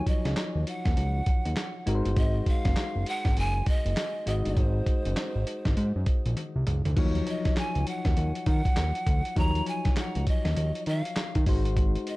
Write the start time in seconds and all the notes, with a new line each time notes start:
Already playing: F3 F#3 D#4 C#5
0.07 D#5, kick, closed hi-hat
0.25 C#2, snare, closed hi-hat
0.37 snare, clap, closed hi-hat
0.55 D#2
0.67 F#5, closed hi-hat
0.85 D#2, kick, snare, closed hi-hat
0.97 C#2, closed hi-hat
1.26 kick, closed hi-hat
1.45 D#2, closed hi-hat
1.56 snare, clap, closed hi-hat
1.86 G#1 G#3 D#4 F#4 A#4, closed hi-hat
1.95 C5
2.05 G1, closed hi-hat
2.17 G#1 D#5, kick, closed hi-hat
2.46 F5, kick, closed hi-hat
2.65 F#1, kick, snare, closed hi-hat
2.76 snare, clap, closed hi-hat
2.95 F#1
3.06 F#5, closed hi-hat
3.25 G#1, kick, snare, closed hi-hat
3.37 F#1 G#5, closed hi-hat
3.66 D#5, kick, closed hi-hat
3.85 F#1, closed hi-hat
3.97 snare, clap, closed hi-hat
4.26 G#1 G#3 D#4 F#4 D#5, closed hi-hat
4.45 G1 C5, closed hi-hat
4.57 G#1, kick, closed hi-hat
4.86 kick, closed hi-hat
5.05 F#1, closed hi-hat
5.17 snare, clap, closed hi-hat
5.36 G#1
5.47 closed hi-hat
5.65 G#1, kick, snare, closed hi-hat
5.77 G#2, closed hi-hat
5.96 F#2
6.06 kick, closed hi-hat
6.26 A#1, closed hi-hat
6.37 closed hi-hat, high tom
6.56 C2
6.67 C#2, closed hi-hat, mid tom
6.85 D2, closed hi-hat, floor tom
6.96 D#2 F3 F#3 D#4 C#5, kick, closed hi-hat, crash
7.15 closed hi-hat
7.27 D#5, closed hi-hat
7.45 C#2, kick, snare, closed hi-hat
7.57 G#5, snare, clap, closed hi-hat
7.75 C#2, closed hi-hat
7.87 F#5, closed hi-hat
8.05 D#2, kick, snare, closed hi-hat
8.17 D#2, closed hi-hat
8.35 closed hi-hat
8.46 D#3 F#5, kick, closed hi-hat
8.65 kick, closed hi-hat
8.76 D#2, snare, clap, closed hi-hat
8.95 closed hi-hat
9.07 D2, kick, closed hi-hat
9.25 closed hi-hat
9.36 D#2 F3 F#3 D#4 C#5 A#5, kick, closed hi-hat
9.55 closed hi-hat
9.66 G#5, closed hi-hat
9.85 C#2, kick, snare, closed hi-hat
9.96 F#5, snare, clap, closed hi-hat
10.15 C#2, closed hi-hat
10.27 D#5, kick, closed hi-hat
10.45 D#2, snare, closed hi-hat
10.57 D#2, closed hi-hat
10.75 closed hi-hat
10.86 D#3 F5, closed hi-hat
11.05 closed hi-hat
11.16 snare, clap, closed hi-hat
11.35 D#3, kick, closed hi-hat
11.46 G#1 G#3 D#4 F#4 C5, kick, open hi-hat
11.65 closed hi-hat
11.77 kick, closed hi-hat
11.95 closed hi-hat
12.07 D#5, closed hi-hat